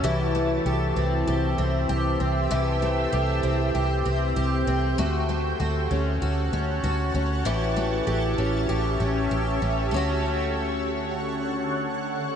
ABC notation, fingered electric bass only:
X:1
M:4/4
L:1/8
Q:1/4=97
K:D
V:1 name="Fingered electric bass" clef=bass
=C,,2 C,, C,, C,, C,, C,, C,, | =C,,2 C,, C,, C,, C,, C,, C,, | D,,2 D,, D,, D,, D,, D,, D,, | A,,,2 A,,, A,,, A,,, A,,, A,,, A,,, |
D,,8 |]